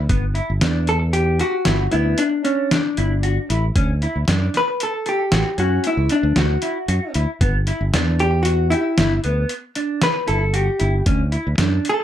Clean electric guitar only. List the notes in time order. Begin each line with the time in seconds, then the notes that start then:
0.09 B3
0.35 E4
0.61 D4
1.39 G4
1.66 E4
1.92 B3
2.45 D4
2.98 E4
3.23 F#4
3.50 E4
3.76 C#4
4.03 E4
4.29 D4
5.06 A4
5.32 F#4
5.58 C#4
6.10 D4
6.62 E4
6.89 F#4
7.15 E4
7.42 B3
7.68 E4
7.94 D4
8.72 G4
8.99 E4
9.24 B3
9.76 D4
10.27 E4
10.54 F#4
10.79 E4
11.06 C#4
11.32 E4
11.59 D4